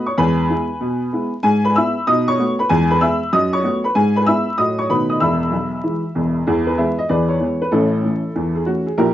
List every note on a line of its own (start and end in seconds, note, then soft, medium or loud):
0.06 0.17 C#5 medium
0.06 0.17 C#6 medium
0.18 0.44 E2 loud
0.18 0.36 G#3 medium
0.18 1.29 B4 medium
0.18 1.29 G#5 medium
0.18 1.33 B5 loud
0.49 0.66 G#3 soft
0.49 0.67 B3 soft
0.49 0.67 E4 medium
0.81 1.07 B2 medium
1.13 1.30 G#3 soft
1.13 1.30 B3 medium
1.13 1.30 E4 medium
1.43 1.70 G#2 loud
1.43 1.63 G#4 medium
1.43 1.64 G#5 loud
1.65 1.75 B4 medium
1.65 1.75 B5 medium
1.76 1.93 G#3 medium
1.76 1.93 B3 medium
1.76 1.94 E4 medium
1.76 2.05 E5 medium
1.76 2.05 B5 medium
1.76 2.07 E6 loud
2.07 2.34 B2 loud
2.07 2.26 D#4 medium
2.07 2.26 D#5 medium
2.07 2.27 D#6 loud
2.28 2.57 C#5 medium
2.28 2.59 C#6 loud
2.39 2.56 A3 medium
2.39 2.56 B3 medium
2.39 2.57 F#4 medium
2.59 2.69 B4 medium
2.59 2.70 B5 medium
2.69 2.96 E2 loud
2.69 2.88 G#3 medium
2.69 2.89 G#4 medium
2.69 2.90 G#5 loud
2.90 3.01 B4 medium
2.90 3.01 B5 medium
3.01 3.19 G#3 medium
3.01 3.18 B3 medium
3.01 3.19 G#4 medium
3.01 3.31 E5 medium
3.01 3.31 B5 medium
3.01 3.32 E6 loud
3.33 3.59 F#2 medium
3.33 3.52 D#5 medium
3.33 3.53 D#6 loud
3.53 3.83 C#5 medium
3.53 3.84 C#6 medium
3.63 3.81 A3 medium
3.63 3.81 B3 medium
3.63 3.81 F#4 medium
3.84 3.95 B4 medium
3.84 3.95 B5 medium
3.95 4.22 G#2 loud
3.95 4.15 G#4 medium
3.95 4.16 G#5 loud
4.16 4.27 B4 medium
4.16 4.27 B5 medium
4.26 4.44 G#3 medium
4.26 4.45 B3 soft
4.26 4.45 E4 medium
4.26 4.57 E5 medium
4.26 4.57 B5 medium
4.26 4.58 E6 loud
4.58 4.85 A2 medium
4.58 4.75 F#3 soft
4.58 4.76 A3 soft
4.58 4.76 F#4 soft
4.58 4.78 D#5 medium
4.58 4.78 D#6 loud
4.78 4.89 C#5 medium
4.78 4.89 C#6 medium
4.89 5.16 B2 medium
4.89 5.07 D#3 soft
4.89 5.07 A3 soft
4.89 5.08 D#4 soft
4.89 5.08 F#4 soft
4.89 5.09 B4 medium
4.89 5.10 B5 medium
5.10 5.21 D#5 medium
5.10 5.21 D#6 medium
5.20 5.46 E1 medium
5.20 5.46 E2 medium
5.20 6.32 E5 medium
5.20 6.32 B5 medium
5.20 6.36 E6 medium
5.51 5.77 B1 medium
5.84 6.01 E3 soft
5.84 6.01 G#3 soft
5.84 6.01 E4 soft
6.15 6.40 E1 medium
6.15 6.40 E2 medium
6.47 6.74 E2 medium
6.47 6.74 E3 medium
6.47 6.67 B3 medium
6.47 6.67 E4 medium
6.47 6.67 G#4 medium
6.67 6.77 B4 medium
6.78 6.96 E3 soft
6.78 6.96 G#3 soft
6.78 6.96 B3 soft
6.78 6.98 G#4 medium
6.78 6.98 B4 medium
6.78 6.99 E5 medium
6.98 7.09 D#5 medium
7.09 7.36 E2 medium
7.09 7.36 E3 medium
7.09 7.29 G#4 medium
7.09 7.29 B4 medium
7.09 7.30 D5 medium
7.29 7.61 C#5 medium
7.40 7.58 E3 soft
7.40 7.58 G#3 soft
7.40 7.58 B3 soft
7.62 7.73 B4 medium
7.72 7.99 A1 medium
7.72 7.99 A2 medium
7.72 8.03 C#4 medium
7.72 8.52 E4 medium
7.72 8.56 A4 medium
8.04 8.21 E3 soft
8.04 8.22 A3 soft
8.04 8.22 C#4 soft
8.36 8.62 E2 medium
8.36 8.62 E3 medium
8.55 8.66 G#4 medium
8.66 8.84 E3 soft
8.66 8.84 A3 soft
8.66 8.84 C#4 soft
8.66 8.87 F#4 medium
8.86 8.98 G#4 medium
8.98 9.14 A#1 medium
8.98 9.14 A#2 medium
8.98 9.14 E4 medium
8.98 9.14 G4 medium
8.98 9.14 A#4 loud